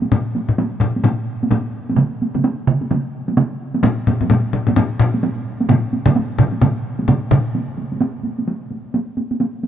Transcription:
0.02 taiko high
0.12 taiko low-mid, taiko high
0.35 taiko high
0.49 taiko low-mid
0.58 taiko high
0.81 taiko low-mid
0.96 taiko high
1.04 taiko low-mid, taiko high
1.43 taiko high
1.51 taiko low-mid, taiko high
1.89 taiko high
1.97 taiko mid, taiko high
2.22 taiko high
2.35 taiko mid, taiko high
2.44 taiko high
2.67 taiko mid
2.81 taiko high
2.91 taiko mid, taiko high
3.28 taiko high
3.37 taiko mid, taiko high
3.74 taiko high
3.83 taiko low-mid, taiko high
4.07 taiko low-mid, taiko high
4.21 taiko low-mid, taiko high
4.30 taiko low-mid, taiko high
4.53 taiko low-mid
4.67 taiko low-mid, taiko high
4.76 taiko low-mid, taiko high
5.00 taiko low-mid
5.14 taiko high
5.23 taiko high
5.60 taiko high
5.69 taiko low-mid, taiko mid, taiko high
5.93 taiko high
6.06 taiko low-mid, taiko mid, taiko high
6.16 taiko high
6.38 taiko low-mid, taiko mid
6.52 taiko high
6.61 taiko low-mid, taiko mid, taiko high
6.99 taiko high
7.08 taiko low-mid, taiko mid, taiko high
7.31 taiko low-mid, taiko mid
7.55 taiko high
7.78 taiko high
7.92 taiko high
8.01 taiko high
8.24 taiko high
8.38 taiko high
8.48 taiko high
8.71 taiko high
8.94 taiko high
9.17 taiko high
9.31 taiko high
9.40 taiko high
9.63 taiko high

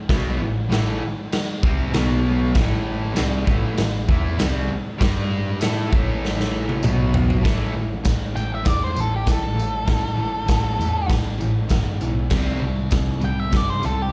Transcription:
0.09 B1 B2 F#3 B3, kick, snare, crash
0.38 A1 A2 E3
0.69 A1 A2 E3 A3, snare, crash
1.32 snare, crash
1.62 C2 C3 G3 C4, kick
1.92 B1 B2 F#3 B3, snare, crash
2.54 A1 A2 E3 A3, kick, snare, crash
3.13 C3 G3 C4, snare, tambourine, crash
3.19 C2
3.45 A1 A2 E3 A3, kick
3.75 A2 E3, snare, crash
3.79 A1
4.08 E2 E3 B3 E4, kick
4.38 C2 C3 G3 C4, snare, tambourine, crash
4.68 muted distorted electric guitar stroke, muted picked electric bass stroke
4.98 G2 G3 D4 G4, kick, snare, crash
5.60 A2 A3 E4 A4, snare, tambourine, crash
5.90 A1 A2 E3 A3, kick
6.25 snare
6.40 snare
6.69 high tom
6.83 B1 B2 F#3 B3, mid tom, tambourine
7.14 floor tom
7.30 floor tom
7.42 A1 A2 E3 A3, kick, snare, crash
7.74 A1 A2 E3
8.04 A1 A2 E3, kick, snare, tambourine, crash
8.35 A1 A2 E3 G5, tambourine
8.55 E5
8.63 E2 A2 E3 D5, kick, snare, tambourine, crash
8.84 C5
8.95 A1 A2 E3, tambourine
9.00 A4
9.16 G4
9.26 A1 A2 E3, kick, snare, tambourine, crash
9.31 A4
9.55 A2 E3
9.59 tambourine
9.85 A1 A2 E3, kick, snare, crash
10.15 A1 A2 E3
10.46 A1 A2 E3, kick, snare, tambourine, crash
10.78 E2 A2 E3, tambourine
11.08 A1 A2 E3, kick, snare, tambourine, crash
11.38 A1 A2 E3, tambourine
11.68 G1 A2 E3, kick, snare, tambourine, crash
12.01 B1 A2 E3, tambourine
12.30 C2 C3 G3 C4, kick, snare, crash
12.60 C2 C3 G3
12.91 C2 C3 G3, kick, snare, tambourine, crash
13.20 C2 C3 G3, tambourine
13.25 G5
13.40 E5
13.51 G2 C3 G3, kick, snare, tambourine, crash
13.56 D5
13.70 C5
13.82 C2 C3 G3, tambourine
13.86 A4
14.02 G4

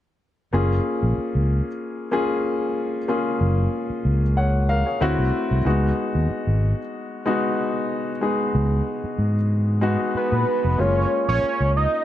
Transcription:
0.53 F#1 A#3 C#4 F4 G#4
1.03 A#1
1.18 muted fingered electric bass stroke
1.35 C#2
2.11 A#3 C#4 F4 G#4
3.08 A#3 C#4 F4 G#4
3.41 F#1
3.90 muted fingered electric bass stroke
4.05 C#2
4.37 C#5 F#5
4.69 A#4 F5
4.86 G#4 C#5
5.01 D2 A3 C4 E4 F#4
5.18 C2
5.51 C2
5.65 C#2 G#3 B3 D#4 F#4
6.15 D#2
6.30 muted fingered electric bass stroke
6.47 G#1
7.26 G#3 B3 D#4 F#4
8.21 G#3 B3 D#4 G#4
8.55 C#2
9.04 muted fingered electric bass stroke
9.19 G#2
9.81 G#3 B3 D#4 F#4
10.15 B4, muted fingered electric bass stroke
10.32 A#2
10.65 F1
10.78 F#1 G#3 A#3 C#4 F4 C#5
11.29 A#1 C#5
11.60 C#2
11.76 D#5

